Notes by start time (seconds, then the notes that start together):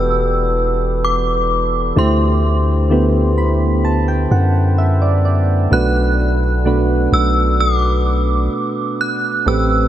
Already playing: E1 E3 B3 F#4 G4 A4 B4 D5 E6
1.04 D6
1.96 D2 D3 A3 E4 G4 C5 C6
2.90 D3 A3 B3 E4 G4
3.38 B5
3.85 A5
4.08 G5
4.31 F#2 F#5
4.78 E5
5.02 D5
5.25 D5
5.71 B1 B2 A3 D4 F#4 B4 F#6
6.65 B2 A3 D4 F#4 B4
7.12 B1 E6
7.60 D6
9.01 F#6
9.46 A1 A2 A3 C4 G4 B4 E6